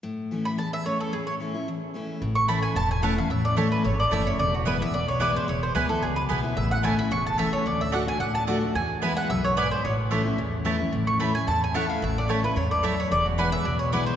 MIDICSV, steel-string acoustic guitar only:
0, 0, Header, 1, 2, 480
1, 0, Start_track
1, 0, Key_signature, 3, "major"
1, 0, Tempo, 272356
1, 70, Time_signature, 4, 2, 24, 8
1, 24957, End_track
2, 0, Start_track
2, 0, Title_t, "Steel-string acoustic guitar"
2, 0, Program_c, 0, 25
2, 56, Note_on_c, 0, 45, 86
2, 547, Note_on_c, 0, 52, 53
2, 564, Note_on_c, 0, 57, 55
2, 575, Note_on_c, 0, 61, 56
2, 590, Note_on_c, 0, 64, 60
2, 978, Note_off_c, 0, 45, 0
2, 1006, Note_off_c, 0, 52, 0
2, 1015, Note_off_c, 0, 57, 0
2, 1020, Note_off_c, 0, 61, 0
2, 1020, Note_on_c, 0, 40, 87
2, 1028, Note_off_c, 0, 64, 0
2, 1496, Note_on_c, 0, 52, 60
2, 1516, Note_on_c, 0, 57, 59
2, 1532, Note_on_c, 0, 61, 63
2, 1542, Note_on_c, 0, 64, 64
2, 1940, Note_off_c, 0, 40, 0
2, 1960, Note_off_c, 0, 52, 0
2, 1971, Note_off_c, 0, 57, 0
2, 1978, Note_off_c, 0, 61, 0
2, 1983, Note_off_c, 0, 64, 0
2, 1990, Note_on_c, 0, 45, 90
2, 2462, Note_on_c, 0, 52, 52
2, 2474, Note_on_c, 0, 57, 57
2, 2489, Note_on_c, 0, 61, 64
2, 2500, Note_on_c, 0, 64, 60
2, 2698, Note_off_c, 0, 64, 0
2, 2711, Note_off_c, 0, 52, 0
2, 2717, Note_off_c, 0, 57, 0
2, 2719, Note_on_c, 0, 64, 56
2, 2724, Note_off_c, 0, 61, 0
2, 2755, Note_on_c, 0, 61, 52
2, 2904, Note_off_c, 0, 45, 0
2, 2937, Note_off_c, 0, 64, 0
2, 2955, Note_off_c, 0, 61, 0
2, 2964, Note_on_c, 0, 40, 82
2, 3418, Note_on_c, 0, 52, 59
2, 3432, Note_on_c, 0, 57, 62
2, 3443, Note_on_c, 0, 61, 59
2, 3457, Note_on_c, 0, 64, 68
2, 3870, Note_off_c, 0, 40, 0
2, 3880, Note_off_c, 0, 52, 0
2, 3887, Note_off_c, 0, 57, 0
2, 3893, Note_off_c, 0, 61, 0
2, 3899, Note_off_c, 0, 64, 0
2, 3908, Note_on_c, 0, 45, 85
2, 4373, Note_on_c, 0, 52, 85
2, 4392, Note_on_c, 0, 57, 89
2, 4407, Note_on_c, 0, 61, 86
2, 4413, Note_on_c, 0, 64, 90
2, 4822, Note_off_c, 0, 45, 0
2, 4837, Note_off_c, 0, 52, 0
2, 4847, Note_off_c, 0, 57, 0
2, 4854, Note_off_c, 0, 61, 0
2, 4857, Note_off_c, 0, 64, 0
2, 4859, Note_on_c, 0, 40, 85
2, 5323, Note_on_c, 0, 52, 91
2, 5343, Note_on_c, 0, 57, 82
2, 5352, Note_on_c, 0, 61, 97
2, 5367, Note_on_c, 0, 64, 101
2, 5558, Note_off_c, 0, 64, 0
2, 5579, Note_off_c, 0, 52, 0
2, 5579, Note_on_c, 0, 64, 66
2, 5589, Note_off_c, 0, 57, 0
2, 5594, Note_off_c, 0, 61, 0
2, 5625, Note_on_c, 0, 61, 47
2, 5777, Note_off_c, 0, 40, 0
2, 5805, Note_off_c, 0, 64, 0
2, 5816, Note_on_c, 0, 45, 89
2, 5828, Note_off_c, 0, 61, 0
2, 6277, Note_on_c, 0, 52, 86
2, 6293, Note_on_c, 0, 57, 83
2, 6310, Note_on_c, 0, 61, 79
2, 6314, Note_on_c, 0, 64, 90
2, 6734, Note_off_c, 0, 45, 0
2, 6748, Note_off_c, 0, 52, 0
2, 6756, Note_off_c, 0, 57, 0
2, 6764, Note_off_c, 0, 61, 0
2, 6766, Note_off_c, 0, 64, 0
2, 6773, Note_on_c, 0, 40, 92
2, 7246, Note_on_c, 0, 52, 85
2, 7261, Note_on_c, 0, 57, 89
2, 7272, Note_on_c, 0, 61, 86
2, 7288, Note_on_c, 0, 64, 97
2, 7484, Note_off_c, 0, 64, 0
2, 7499, Note_off_c, 0, 52, 0
2, 7505, Note_on_c, 0, 64, 57
2, 7507, Note_off_c, 0, 57, 0
2, 7512, Note_off_c, 0, 61, 0
2, 7540, Note_on_c, 0, 61, 53
2, 7692, Note_off_c, 0, 40, 0
2, 7727, Note_off_c, 0, 64, 0
2, 7744, Note_off_c, 0, 61, 0
2, 7746, Note_on_c, 0, 40, 89
2, 8210, Note_on_c, 0, 52, 79
2, 8223, Note_on_c, 0, 56, 78
2, 8234, Note_on_c, 0, 59, 86
2, 8251, Note_on_c, 0, 64, 99
2, 8438, Note_off_c, 0, 64, 0
2, 8459, Note_on_c, 0, 64, 62
2, 8461, Note_off_c, 0, 52, 0
2, 8467, Note_off_c, 0, 56, 0
2, 8473, Note_off_c, 0, 59, 0
2, 8500, Note_on_c, 0, 59, 49
2, 8658, Note_off_c, 0, 40, 0
2, 8683, Note_off_c, 0, 64, 0
2, 8699, Note_on_c, 0, 47, 88
2, 8703, Note_off_c, 0, 59, 0
2, 9156, Note_on_c, 0, 52, 81
2, 9174, Note_on_c, 0, 56, 93
2, 9187, Note_on_c, 0, 59, 85
2, 9201, Note_on_c, 0, 64, 90
2, 9614, Note_off_c, 0, 47, 0
2, 9625, Note_off_c, 0, 52, 0
2, 9634, Note_off_c, 0, 56, 0
2, 9640, Note_off_c, 0, 59, 0
2, 9647, Note_off_c, 0, 64, 0
2, 9655, Note_on_c, 0, 40, 85
2, 10129, Note_on_c, 0, 52, 80
2, 10140, Note_on_c, 0, 56, 89
2, 10160, Note_on_c, 0, 59, 86
2, 10168, Note_on_c, 0, 64, 89
2, 10369, Note_off_c, 0, 64, 0
2, 10379, Note_off_c, 0, 52, 0
2, 10385, Note_off_c, 0, 56, 0
2, 10390, Note_on_c, 0, 64, 59
2, 10394, Note_off_c, 0, 59, 0
2, 10436, Note_on_c, 0, 59, 53
2, 10572, Note_off_c, 0, 40, 0
2, 10608, Note_off_c, 0, 64, 0
2, 10624, Note_on_c, 0, 47, 87
2, 10630, Note_off_c, 0, 59, 0
2, 11091, Note_on_c, 0, 52, 79
2, 11106, Note_on_c, 0, 56, 91
2, 11119, Note_on_c, 0, 59, 87
2, 11133, Note_on_c, 0, 64, 93
2, 11323, Note_off_c, 0, 64, 0
2, 11339, Note_off_c, 0, 52, 0
2, 11344, Note_on_c, 0, 64, 67
2, 11347, Note_off_c, 0, 56, 0
2, 11354, Note_off_c, 0, 59, 0
2, 11383, Note_on_c, 0, 59, 50
2, 11536, Note_off_c, 0, 47, 0
2, 11564, Note_off_c, 0, 64, 0
2, 11571, Note_on_c, 0, 45, 92
2, 11584, Note_off_c, 0, 59, 0
2, 12035, Note_on_c, 0, 52, 83
2, 12059, Note_on_c, 0, 57, 79
2, 12065, Note_on_c, 0, 61, 86
2, 12081, Note_on_c, 0, 64, 94
2, 12278, Note_off_c, 0, 64, 0
2, 12292, Note_off_c, 0, 52, 0
2, 12299, Note_on_c, 0, 64, 60
2, 12303, Note_off_c, 0, 57, 0
2, 12306, Note_off_c, 0, 61, 0
2, 12341, Note_on_c, 0, 61, 47
2, 12489, Note_off_c, 0, 45, 0
2, 12521, Note_off_c, 0, 64, 0
2, 12529, Note_on_c, 0, 40, 90
2, 12542, Note_off_c, 0, 61, 0
2, 13000, Note_on_c, 0, 52, 93
2, 13017, Note_on_c, 0, 57, 89
2, 13029, Note_on_c, 0, 61, 93
2, 13040, Note_on_c, 0, 64, 92
2, 13448, Note_off_c, 0, 40, 0
2, 13466, Note_off_c, 0, 52, 0
2, 13475, Note_off_c, 0, 57, 0
2, 13480, Note_off_c, 0, 61, 0
2, 13486, Note_off_c, 0, 64, 0
2, 13493, Note_on_c, 0, 50, 93
2, 13948, Note_off_c, 0, 50, 0
2, 13969, Note_on_c, 0, 50, 82
2, 13986, Note_on_c, 0, 57, 87
2, 14000, Note_on_c, 0, 62, 90
2, 14014, Note_on_c, 0, 66, 96
2, 14191, Note_off_c, 0, 66, 0
2, 14212, Note_on_c, 0, 66, 56
2, 14218, Note_off_c, 0, 50, 0
2, 14226, Note_off_c, 0, 57, 0
2, 14234, Note_off_c, 0, 62, 0
2, 14254, Note_on_c, 0, 62, 51
2, 14438, Note_off_c, 0, 66, 0
2, 14459, Note_off_c, 0, 62, 0
2, 14460, Note_on_c, 0, 45, 87
2, 14936, Note_on_c, 0, 50, 90
2, 14947, Note_on_c, 0, 57, 85
2, 14958, Note_on_c, 0, 62, 93
2, 14977, Note_on_c, 0, 66, 94
2, 15175, Note_off_c, 0, 66, 0
2, 15182, Note_off_c, 0, 50, 0
2, 15187, Note_off_c, 0, 57, 0
2, 15193, Note_off_c, 0, 62, 0
2, 15197, Note_on_c, 0, 66, 57
2, 15232, Note_on_c, 0, 62, 50
2, 15374, Note_off_c, 0, 45, 0
2, 15410, Note_off_c, 0, 66, 0
2, 15428, Note_off_c, 0, 62, 0
2, 15438, Note_on_c, 0, 40, 92
2, 15897, Note_on_c, 0, 52, 85
2, 15913, Note_on_c, 0, 56, 84
2, 15926, Note_on_c, 0, 59, 91
2, 15935, Note_on_c, 0, 64, 88
2, 16344, Note_off_c, 0, 40, 0
2, 16355, Note_off_c, 0, 52, 0
2, 16364, Note_off_c, 0, 56, 0
2, 16370, Note_off_c, 0, 59, 0
2, 16374, Note_off_c, 0, 64, 0
2, 16386, Note_on_c, 0, 42, 88
2, 16840, Note_off_c, 0, 42, 0
2, 16861, Note_on_c, 0, 44, 86
2, 17318, Note_off_c, 0, 44, 0
2, 17354, Note_on_c, 0, 45, 91
2, 17810, Note_on_c, 0, 52, 86
2, 17827, Note_on_c, 0, 57, 92
2, 17842, Note_on_c, 0, 61, 95
2, 17849, Note_on_c, 0, 64, 84
2, 18045, Note_off_c, 0, 64, 0
2, 18060, Note_off_c, 0, 52, 0
2, 18066, Note_on_c, 0, 64, 58
2, 18069, Note_off_c, 0, 57, 0
2, 18076, Note_off_c, 0, 61, 0
2, 18102, Note_on_c, 0, 61, 49
2, 18263, Note_off_c, 0, 45, 0
2, 18286, Note_off_c, 0, 64, 0
2, 18298, Note_on_c, 0, 40, 84
2, 18304, Note_off_c, 0, 61, 0
2, 18761, Note_on_c, 0, 52, 86
2, 18774, Note_on_c, 0, 57, 81
2, 18794, Note_on_c, 0, 61, 93
2, 18801, Note_on_c, 0, 64, 92
2, 18988, Note_off_c, 0, 64, 0
2, 19009, Note_on_c, 0, 64, 61
2, 19016, Note_off_c, 0, 52, 0
2, 19023, Note_off_c, 0, 57, 0
2, 19033, Note_off_c, 0, 61, 0
2, 19053, Note_on_c, 0, 61, 51
2, 19215, Note_off_c, 0, 40, 0
2, 19239, Note_off_c, 0, 64, 0
2, 19253, Note_on_c, 0, 45, 92
2, 19260, Note_off_c, 0, 61, 0
2, 19728, Note_on_c, 0, 52, 78
2, 19745, Note_on_c, 0, 57, 85
2, 19757, Note_on_c, 0, 61, 85
2, 19769, Note_on_c, 0, 64, 88
2, 19962, Note_off_c, 0, 64, 0
2, 19981, Note_off_c, 0, 52, 0
2, 19983, Note_on_c, 0, 64, 58
2, 19989, Note_off_c, 0, 57, 0
2, 19995, Note_off_c, 0, 61, 0
2, 20022, Note_on_c, 0, 61, 50
2, 20173, Note_off_c, 0, 45, 0
2, 20206, Note_off_c, 0, 64, 0
2, 20217, Note_on_c, 0, 40, 88
2, 20226, Note_off_c, 0, 61, 0
2, 20700, Note_on_c, 0, 52, 89
2, 20708, Note_on_c, 0, 57, 91
2, 20721, Note_on_c, 0, 61, 86
2, 20735, Note_on_c, 0, 64, 98
2, 21136, Note_off_c, 0, 40, 0
2, 21160, Note_off_c, 0, 52, 0
2, 21164, Note_off_c, 0, 57, 0
2, 21170, Note_off_c, 0, 61, 0
2, 21177, Note_off_c, 0, 64, 0
2, 21186, Note_on_c, 0, 45, 93
2, 21643, Note_on_c, 0, 52, 85
2, 21663, Note_on_c, 0, 57, 82
2, 21678, Note_on_c, 0, 61, 94
2, 21688, Note_on_c, 0, 64, 99
2, 21888, Note_off_c, 0, 64, 0
2, 21899, Note_off_c, 0, 52, 0
2, 21909, Note_off_c, 0, 57, 0
2, 21909, Note_on_c, 0, 64, 56
2, 21917, Note_off_c, 0, 61, 0
2, 21951, Note_on_c, 0, 61, 47
2, 22102, Note_off_c, 0, 45, 0
2, 22131, Note_off_c, 0, 64, 0
2, 22135, Note_on_c, 0, 44, 86
2, 22152, Note_off_c, 0, 61, 0
2, 22599, Note_off_c, 0, 44, 0
2, 22624, Note_on_c, 0, 42, 90
2, 23084, Note_off_c, 0, 42, 0
2, 23112, Note_on_c, 0, 40, 91
2, 23579, Note_on_c, 0, 52, 73
2, 23596, Note_on_c, 0, 56, 85
2, 23611, Note_on_c, 0, 59, 96
2, 23619, Note_on_c, 0, 64, 91
2, 24026, Note_off_c, 0, 40, 0
2, 24042, Note_off_c, 0, 52, 0
2, 24050, Note_off_c, 0, 56, 0
2, 24058, Note_off_c, 0, 59, 0
2, 24060, Note_on_c, 0, 47, 85
2, 24062, Note_off_c, 0, 64, 0
2, 24536, Note_on_c, 0, 52, 81
2, 24552, Note_on_c, 0, 56, 92
2, 24564, Note_on_c, 0, 59, 95
2, 24573, Note_on_c, 0, 64, 95
2, 24957, Note_off_c, 0, 47, 0
2, 24957, Note_off_c, 0, 52, 0
2, 24957, Note_off_c, 0, 56, 0
2, 24957, Note_off_c, 0, 59, 0
2, 24957, Note_off_c, 0, 64, 0
2, 24957, End_track
0, 0, End_of_file